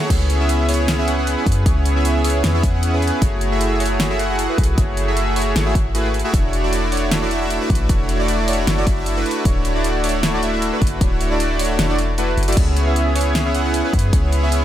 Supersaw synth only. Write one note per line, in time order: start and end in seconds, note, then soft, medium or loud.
0.10 0.38 B3 medium
0.10 0.38 C#4 medium
0.10 0.38 E4 medium
0.10 0.38 G#4 medium
0.10 0.38 C#5 medium
0.40 0.66 B3 medium
0.40 0.66 C#4 medium
0.40 0.66 E4 medium
0.40 0.66 G#4 medium
0.40 0.66 E5 medium
0.69 0.96 B3 medium
0.69 0.96 C#4 medium
0.69 0.96 E4 medium
0.69 0.96 G#4 medium
0.69 0.96 C#5 medium
0.98 1.06 B3 loud
0.98 1.06 C#4 medium
0.98 1.06 E4 medium
0.98 1.06 G#4 medium
0.98 1.06 E5 loud
1.07 1.16 B3 medium
1.07 1.15 C#4 medium
1.07 1.15 E4 medium
1.07 1.16 G#4 medium
1.07 1.15 F#5 medium
1.18 1.35 B3 medium
1.18 1.35 C#4 medium
1.18 1.35 E4 medium
1.18 1.35 G#4 medium
1.18 1.35 F#5 medium
1.37 1.64 B3 medium
1.37 1.64 C#4 medium
1.37 1.64 E4 medium
1.37 1.64 G#4 medium
1.37 1.64 B4 medium
1.66 1.93 B3 medium
1.66 1.93 C#4 medium
1.66 1.93 E4 medium
1.66 1.93 G#4 medium
1.66 1.93 C#5 medium
1.96 2.22 B3 medium
1.96 2.22 C#4 medium
1.96 2.22 E4 medium
1.96 2.22 G#4 medium
1.96 2.22 E5 medium
2.24 2.52 B3 medium
2.24 2.52 C#4 medium
2.24 2.52 E4 medium
2.24 2.52 G#4 medium
2.24 2.52 C#5 medium
2.54 2.62 B3 loud
2.54 2.62 C#4 medium
2.54 2.62 E4 loud
2.54 2.61 G#4 medium
2.54 2.62 E5 loud
2.63 2.71 B3 medium
2.63 2.71 C#4 medium
2.63 2.71 E4 medium
2.63 2.71 G#4 medium
2.63 2.71 F#5 loud
2.74 2.91 B3 medium
2.74 2.91 C#4 medium
2.74 2.91 E4 medium
2.74 2.91 G#4 medium
2.74 2.91 F#5 medium
2.93 3.20 B3 medium
2.93 3.20 C#4 medium
2.93 3.20 E4 medium
2.93 3.20 G#4 medium
2.93 3.20 B4 medium
3.22 3.49 A3 medium
3.22 3.49 E4 medium
3.22 3.49 F#4 medium
3.22 3.49 G#4 medium
3.22 3.49 C#5 medium
3.52 3.78 A3 medium
3.52 3.78 E4 medium
3.52 3.78 F#4 medium
3.52 3.78 G#4 medium
3.52 3.78 E5 medium
3.80 4.08 A3 medium
3.80 4.08 E4 medium
3.80 4.08 F#4 medium
3.80 4.08 G#4 medium
3.80 4.08 C#5 medium
4.10 4.17 A3 loud
4.10 4.17 E4 loud
4.10 4.17 F#4 medium
4.10 4.17 G#4 medium
4.10 4.17 E5 loud
4.19 4.27 A3 medium
4.19 4.27 E4 medium
4.19 4.27 F#4 medium
4.19 4.27 G#4 medium
4.19 4.27 F#5 medium
4.30 4.47 A3 medium
4.30 4.47 E4 medium
4.30 4.47 F#4 medium
4.30 4.47 G#4 medium
4.30 4.47 F#5 medium
4.49 4.75 A3 medium
4.49 4.75 E4 medium
4.49 4.75 F#4 medium
4.49 4.75 G#4 medium
4.49 4.75 B4 medium
4.78 5.05 A3 medium
4.78 5.05 E4 medium
4.78 5.05 F#4 medium
4.78 5.05 G#4 medium
4.78 5.05 C#5 medium
5.07 5.34 A3 medium
5.07 5.34 E4 medium
5.07 5.34 F#4 medium
5.07 5.34 G#4 medium
5.07 5.34 E5 medium
5.36 5.63 A3 medium
5.36 5.64 E4 medium
5.36 5.63 F#4 medium
5.36 5.64 G#4 medium
5.36 5.63 C#5 medium
5.66 5.73 A3 loud
5.66 5.73 E4 medium
5.66 5.73 F#4 medium
5.66 5.73 G#4 medium
5.66 5.73 E5 loud
5.95 6.08 A3 medium
5.95 6.08 E4 medium
5.95 6.08 F#4 medium
5.95 6.08 G#4 medium
5.95 6.08 B4 loud
6.24 6.32 A3 medium
6.24 6.32 E4 medium
6.24 6.32 F#4 medium
6.24 6.32 G#4 medium
6.24 6.32 E5 loud
6.33 6.61 A3 medium
6.33 6.61 D4 medium
6.33 6.61 E4 medium
6.33 6.61 F#4 medium
6.33 6.61 C#5 medium
6.63 6.90 A3 medium
6.63 6.90 D4 medium
6.63 6.90 E4 medium
6.63 6.90 F#4 medium
6.63 6.90 D5 medium
6.92 7.19 A3 medium
6.92 7.19 D4 medium
6.92 7.19 E4 medium
6.92 7.19 F#4 medium
6.92 7.19 C#5 medium
7.22 7.29 A3 loud
7.22 7.29 D4 medium
7.22 7.29 E4 medium
7.22 7.29 F#4 medium
7.22 7.29 D5 loud
7.31 7.39 A3 medium
7.31 7.39 D4 medium
7.31 7.39 E4 medium
7.31 7.39 F#4 medium
7.31 7.39 E5 medium
7.41 7.58 A3 medium
7.41 7.58 D4 medium
7.41 7.58 E4 medium
7.41 7.58 F#4 medium
7.41 7.58 E5 medium
7.61 7.87 A3 medium
7.61 7.87 D4 medium
7.61 7.87 E4 medium
7.61 7.87 F#4 medium
7.61 7.87 B4 medium
7.89 8.17 A3 medium
7.89 8.17 D4 medium
7.89 8.17 E4 medium
7.89 8.17 F#4 medium
7.89 8.17 C#5 medium
8.19 8.46 A3 medium
8.19 8.46 D4 medium
8.19 8.46 E4 medium
8.19 8.46 F#4 medium
8.19 8.46 D5 loud
8.48 8.75 A3 medium
8.48 8.75 D4 medium
8.48 8.75 E4 medium
8.48 8.75 F#4 medium
8.48 8.75 C#5 medium
8.78 8.85 A3 loud
8.78 8.85 D4 medium
8.78 8.85 E4 medium
8.78 8.85 F#4 medium
8.78 8.85 D5 loud
8.87 8.95 A3 medium
8.87 8.95 D4 medium
8.87 8.95 E4 medium
8.87 8.95 F#4 medium
8.87 8.95 E5 medium
8.97 9.14 A3 medium
8.97 9.14 D4 medium
8.97 9.14 E4 medium
8.97 9.14 F#4 medium
8.97 9.14 E5 medium
9.17 9.43 A3 medium
9.17 9.43 D4 medium
9.17 9.43 E4 medium
9.17 9.43 F#4 medium
9.17 9.43 B4 medium
9.45 9.73 A3 medium
9.45 9.73 D4 medium
9.45 9.73 E4 medium
9.45 9.73 F#4 medium
9.45 9.73 C#5 medium
9.75 10.02 A3 medium
9.75 10.02 D4 medium
9.75 10.02 E4 medium
9.75 10.02 F#4 medium
9.75 10.02 D5 medium
10.04 10.31 A3 medium
10.04 10.31 D4 medium
10.04 10.31 E4 medium
10.04 10.31 F#4 medium
10.04 10.31 C#5 medium
10.34 10.41 A3 loud
10.34 10.41 D4 medium
10.34 10.41 E4 medium
10.34 10.41 F#4 loud
10.34 10.41 D5 loud
10.43 10.51 A3 medium
10.43 10.51 D4 medium
10.43 10.51 E4 medium
10.43 10.51 F#4 medium
10.43 10.51 E5 medium
10.53 10.70 A3 medium
10.53 10.70 D4 medium
10.53 10.70 E4 medium
10.53 10.70 F#4 medium
10.53 10.70 E5 medium
10.73 10.99 A3 medium
10.73 10.99 D4 medium
10.73 10.99 E4 medium
10.73 10.99 F#4 medium
10.73 10.99 B4 medium
11.01 11.29 A3 medium
11.01 11.29 D4 medium
11.01 11.29 E4 medium
11.01 11.29 F#4 medium
11.01 11.29 C#5 medium
11.31 11.57 A3 medium
11.31 11.57 D4 medium
11.31 11.57 E4 medium
11.31 11.57 F#4 medium
11.31 11.57 D5 medium
11.60 11.87 A3 medium
11.60 11.87 D4 medium
11.60 11.87 E4 medium
11.60 11.87 F#4 medium
11.60 11.87 C#5 medium
11.89 11.97 A3 loud
11.89 11.97 D4 medium
11.89 11.97 E4 medium
11.89 11.97 F#4 medium
11.89 11.97 D5 loud
12.18 12.31 A3 medium
12.18 12.31 D4 medium
12.18 12.31 E4 medium
12.18 12.31 F#4 medium
12.18 12.31 B4 loud
12.48 12.55 A3 loud
12.48 12.55 D4 medium
12.48 12.55 E4 medium
12.48 12.55 F#4 medium
12.48 12.55 D5 loud
12.57 12.84 B3 medium
12.57 12.84 C#4 medium
12.57 12.84 E4 medium
12.57 12.84 G#4 medium
12.57 12.84 C#5 medium
12.87 13.13 B3 medium
12.87 13.13 C#4 medium
12.87 13.13 E4 medium
12.87 13.13 G#4 medium
12.87 13.13 E5 medium
13.15 13.43 B3 medium
13.15 13.43 C#4 medium
13.15 13.43 E4 medium
13.15 13.43 G#4 medium
13.15 13.43 C#5 medium
13.45 13.53 B3 loud
13.45 13.53 C#4 medium
13.45 13.53 E4 medium
13.45 13.53 G#4 medium
13.45 13.53 E5 loud
13.54 13.62 B3 medium
13.54 13.62 C#4 medium
13.54 13.62 E4 medium
13.54 13.62 G#4 medium
13.54 13.62 F#5 loud
13.65 13.82 B3 medium
13.65 13.82 C#4 medium
13.65 13.82 E4 medium
13.65 13.82 G#4 medium
13.65 13.82 F#5 medium
13.84 14.11 B3 medium
13.84 14.11 C#4 medium
13.84 14.11 E4 medium
13.84 14.11 G#4 medium
13.84 14.11 B4 medium
14.13 14.40 B3 medium
14.13 14.40 C#4 medium
14.13 14.40 E4 medium
14.13 14.40 G#4 medium
14.13 14.40 C#5 medium
14.43 14.65 B3 medium
14.43 14.65 C#4 medium
14.43 14.65 E4 medium
14.43 14.65 G#4 medium
14.43 14.65 E5 medium